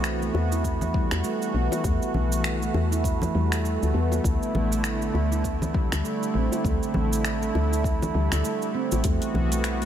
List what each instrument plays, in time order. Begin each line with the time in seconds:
Already playing: fm bass B1, analog synth pad E3 B3 F#4
0.04 finger snap, shaker
0.22 handpan A3, shaker
0.34 fm bass E2, high bongo
0.52 handpan E4, shaker
0.64 kick, shaker
0.81 low conga, shaker
0.94 handpan G3, kick
1.11 fm bass E2, finger snap, shaker
1.24 handpan A3, shaker
1.42 shaker
1.54 fm bass B1, handpan B3
1.72 high bongo, shaker
1.84 fm bass E2, analog synth pad A3, handpan A3, kick, shaker
2.02 shaker
2.14 fm bass B1, low conga
2.32 handpan A3, shaker
2.44 finger snap, shaker
2.62 handpan A3, shaker
2.74 fm bass E2, high bongo
2.92 handpan E4, shaker
3.04 kick, shaker
3.22 high bongo, low conga, shaker
3.35 fm bass E2, handpan G3
3.52 finger snap, shaker
3.64 handpan A3, shaker
3.83 fm bass D2, shaker
3.94 fm bass E2, handpan B3
4.12 high bongo, shaker
4.24 fm bass D2, analog synth pad D3 E4, handpan A3, kick, shaker
4.43 shaker
4.55 fm bass A1, low conga
4.72 handpan A3, shaker
4.84 finger snap, shaker
5.01 handpan A3, shaker
5.14 fm bass D2, high bongo
5.32 handpan E4, shaker
5.44 kick, shaker
5.62 low conga, shaker
5.74 handpan G3, kick
5.92 fm bass D2, finger snap, shaker
6.04 handpan A3, shaker
6.23 shaker
6.34 fm bass A1, handpan C4
6.52 high bongo, shaker
6.64 fm bass D2, handpan A3, kick, shaker
6.83 shaker
6.94 fm bass A1, low conga
7.12 handpan A3, shaker
7.25 finger snap, shaker
7.42 handpan A3, shaker
7.55 fm bass D2, high bongo
7.72 handpan E4, shaker
7.84 kick, shaker
8.02 high bongo, low conga, shaker
8.14 fm bass D2, handpan G3
8.32 fm bass D2, finger snap, shaker
8.44 handpan A3, shaker
8.62 shaker
8.74 handpan C4
8.92 fm bass A1, high bongo, shaker
9.04 fm bass E2, analog synth pad E3 B3 F#4, handpan A3, kick, closed hi-hat, shaker
9.22 closed hi-hat, shaker
9.34 fm bass B1, low conga
9.51 handpan A3, closed hi-hat, shaker
9.64 finger snap, closed hi-hat, shaker
9.81 handpan A3, closed hi-hat